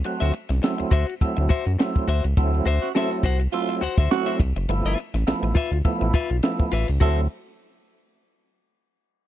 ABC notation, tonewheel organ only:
X:1
M:4/4
L:1/8
Q:"Swing 16ths" 1/4=103
K:Dmix
V:1 name="Tonewheel organ"
[F,A,CF] z [F,A,CE] z [F,A,CE] z [F,A,CE] z | [F,A,CE] z [F,A,CE] z [F,A,CE] z [F,A,CE] z | [=F,A,B,E] z [F,A,B,E] z [F,A,B,E] z [F,A,B,E] z | [F,A,CE] z6 z |]